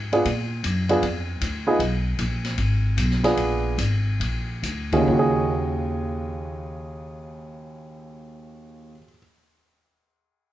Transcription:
Already playing: G#2
0.12 B3 D4 F4 G#4, ride
0.25 A#2, kick, ride
0.63 F#2, kick, hi-hat pedal, ride
0.89 B3 D4 F4 G#4, ride
1.02 F2, kick, ride
1.41 D2, kick, hi-hat pedal, ride
1.67 B3 D#4 F4 G#4
1.79 B1, kick, ride
2.19 A#1, kick, hi-hat pedal, ride
2.44 snare, ride
2.58 G#1, kick, ride
2.97 B1, kick, hi-hat pedal, ride
3.11 snare
3.24 B3 D4 F4 G#4, snare, ride
3.37 A#1, kick, ride
3.78 G#1, kick, hi-hat pedal, ride
4.20 A#1, kick, ride
4.63 D2, kick, hi-hat pedal, ride
4.92 D#2 D#3 C#4 F4 F#4 G#4, kick, ride
5.00 C#3
5.07 D#2 F4
5.13 F#4
5.19 G#4

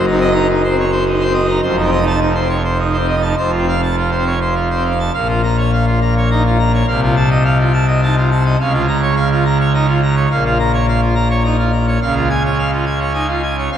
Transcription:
Already playing: F#1 F#2
0.07 D#4
0.12 C4
0.20 D#5
0.31 D#4 A#5
0.49 D#4
0.64 C5
0.69 C4
0.79 C#5
0.91 C5
1.06 D#4
1.20 C5
1.24 C4
1.33 D#5
1.44 D#4
1.48 A#5
1.63 F1 F2 C5
1.77 D#4
1.82 C4
1.91 D#5
2.01 D#4
2.07 A5
2.21 D#4
2.35 C5
2.39 C4
2.49 C#5
2.64 C5
2.78 D#4
2.93 C5
2.97 C4
3.08 D#5
3.17 D#4
3.22 A5
3.37 F1 F2 C5
3.52 F4
3.58 C4
3.68 F5
3.82 A5
3.97 F4
4.11 C5
4.17 C4
4.26 C#5
4.41 C5
4.55 F4
4.70 C5
4.75 C4
4.85 F5
5.00 A5
5.14 A#1 A#2 F5
5.28 F4
5.43 A#5
5.58 C#5
5.73 F5
5.86 F4
6.01 A#5
6.17 C#5
6.31 D#4 A#5
6.45 F4
6.59 A#5
6.74 C#5
6.87 C2 C3 F5
7.03 F4
7.16 A5
7.30 D#5
7.45 F5
7.59 F4
7.73 A5
7.88 D#5
8.03 D#4 A5
8.18 F4
8.31 A5
8.45 D#5
8.60 C#2 C#3 F5
8.73 F4
8.88 A#5
9.02 C#5
9.16 F5
9.32 F4
9.45 A#5
9.60 C#5
9.74 D#4 A#5
9.88 F4
10.03 A#5
10.16 C#5
10.31 A#1 A#2 F5
10.45 F4
10.59 A#5
10.73 C#5
10.88 F5
11.01 F4
11.15 A#5
11.30 C#5
11.44 D#4 A#5
11.59 F4
11.73 A#5
11.87 C#5
12.02 C#2 C#3 F5
12.15 F4
12.30 G#5
12.45 C#5
12.58 F5
12.71 F4
12.86 G#5
12.99 C#5
13.14 D#4 G#5
13.28 F4
13.43 G#5
13.58 C#5
13.72 C2 C3 F5

